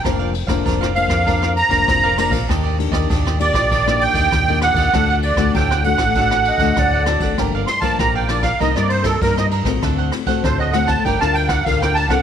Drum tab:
RD |x-xxx-xxx-xxx-xx|x-xxx-xxx-xxx-xx|x-xxx-xxx-xxx-xx|x-xxx-xxx-xxx-xx|
SD |r--r-r-r-r--r-r-|r--r-r-r-r--r-r-|r--r-r-r-r--r-r-|r-r-r-rr-r-r-r-r|
BD |o--oo--oo--oo--o|o--oo--oo--oo--o|o--oo--oo--oo--o|o--oo--oo--oo--o|

RD |x-xxx-xxx-xxx-xx|
SD |r-r-r-rr-r-r-r-r|
BD |o--oo--oo--oo--o|